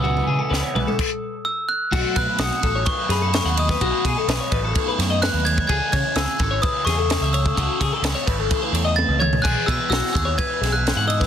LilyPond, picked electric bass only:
\new Staff \with { instrumentName = "Picked electric bass" } { \clef bass \time 4/4 \key b \mixolydian \tempo 4 = 128 cis,8 cis16 r16 cis,16 r16 b,,16 r2 r16 | b,,16 r16 b,16 r16 b,,16 r16 a,,8 r8 fis,8. dis,8. | b,,16 r16 b,16 r16 b,,16 r16 a,,8 r8 fis,8. dis,8. | cis,16 r16 cis16 r16 cis,16 r16 gis,,8 r8 e,8. cis,8. |
cis,16 r16 cis16 r16 cis,16 r16 gis,,8 r8 e,8. cis,8. | b,,16 r16 b,16 r16 b,,16 r16 dis,8 r8 b,,8. gis,8. | }